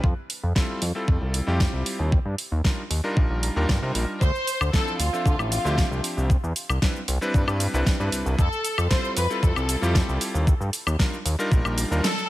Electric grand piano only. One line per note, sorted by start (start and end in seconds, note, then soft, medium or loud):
0.55 0.80 G3 medium
0.55 0.80 C4 medium
0.55 0.80 E4 medium
0.55 0.80 F4 medium
0.55 0.80 A4 medium
0.95 1.44 G3 medium
0.95 1.44 C4 medium
0.95 1.44 E4 medium
0.95 1.45 F4 medium
0.95 1.45 A4 medium
1.47 2.10 G3 medium
1.47 2.11 C4 medium
1.47 2.11 E4 medium
1.47 2.11 F4 medium
1.47 2.11 G4 loud
2.64 2.80 G3 medium
2.64 2.80 D4 medium
2.64 2.80 D#4 medium
2.64 2.80 F4 medium
2.64 2.80 A#4 medium
3.04 3.53 G3 medium
3.04 3.53 D4 medium
3.04 3.53 D#4 medium
3.04 3.53 F4 medium
3.04 3.53 A#4 loud
3.56 3.78 G3 medium
3.56 3.78 D4 medium
3.56 3.79 D#4 medium
3.56 3.79 F4 medium
3.56 3.79 A#4 loud
3.82 4.20 G3 medium
3.82 4.20 D4 medium
3.82 4.20 D#4 medium
3.82 4.20 F4 medium
3.82 4.20 A#4 medium
4.73 4.97 F3 medium
4.73 4.98 C4 medium
4.73 4.98 D4 medium
4.73 4.98 E4 medium
4.73 4.98 A4 loud
5.13 5.62 F3 medium
5.13 5.62 C4 medium
5.13 5.62 D4 medium
5.13 5.62 A4 medium
5.13 5.62 E5 medium
5.65 6.28 F3 medium
5.65 6.28 C4 medium
5.65 6.29 D4 medium
5.65 6.29 G4 loud
5.65 6.29 E5 medium
6.82 6.97 G3 medium
6.82 6.97 C4 medium
6.82 6.98 D4 medium
6.82 6.98 E4 medium
6.82 6.98 B4 medium
7.21 7.70 G3 medium
7.21 7.71 C4 medium
7.21 7.71 D4 medium
7.21 7.71 E4 medium
7.21 7.71 B4 loud
7.74 7.96 G3 medium
7.74 7.96 C4 medium
7.74 7.96 D4 medium
7.74 7.96 E4 medium
7.74 7.96 B4 loud
8.00 8.37 G3 medium
8.00 8.37 C4 medium
8.00 8.37 D4 medium
8.00 8.37 E4 medium
8.00 8.38 B4 medium
8.90 9.15 G3 medium
8.90 9.15 C4 medium
8.90 9.15 E4 medium
8.90 9.15 F4 medium
8.90 9.15 A4 loud
9.30 9.79 G3 medium
9.30 9.79 C4 medium
9.30 9.79 E4 medium
9.30 9.79 F4 medium
9.30 9.79 A4 medium
9.81 10.45 G3 medium
9.81 10.46 C4 medium
9.81 10.46 E4 medium
9.81 10.46 F4 medium
9.81 10.46 G4 loud
10.99 11.15 G3 medium
10.99 11.15 D4 medium
10.99 11.15 D#4 medium
10.99 11.15 F4 medium
10.99 11.15 A#4 medium
11.39 11.88 G3 loud
11.39 11.88 D4 medium
11.39 11.88 D#4 medium
11.39 11.88 F4 medium
11.39 11.88 A#4 loud
11.91 12.06 G3 medium
11.91 12.06 D4 medium
11.91 12.06 D#4 medium
11.91 12.06 F4 medium
11.91 12.06 A#4 loud